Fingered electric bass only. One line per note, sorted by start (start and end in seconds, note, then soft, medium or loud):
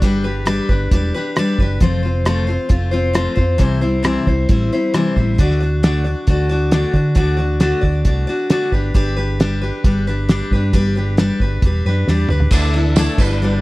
0.02 0.59 G1 medium
0.69 0.88 G1 medium
0.92 1.11 E1 medium
1.59 1.78 F#1 medium
1.82 2.57 F1 medium
2.70 3.27 F1 medium
3.37 3.60 F2 medium
3.60 4.16 C2 medium
4.27 4.46 C2 medium
4.50 4.68 A1 medium
5.16 5.35 A1 medium
5.39 6.14 D2 medium
6.28 6.84 D2 medium
6.94 7.18 D3 medium
7.16 7.72 D2 medium
7.83 8.02 D2 medium
8.05 8.24 C2 medium
8.72 8.91 G1 medium
8.95 9.70 G1 loud
9.85 10.41 G1 medium
10.51 10.75 G2 medium
10.74 11.30 G1 medium
11.40 11.59 G1 medium
11.62 11.81 E1 medium
11.85 12.05 F#2 medium
12.08 12.28 E2 medium
12.30 12.49 D2 medium
12.51 13.07 D2 medium
13.18 13.61 G1 medium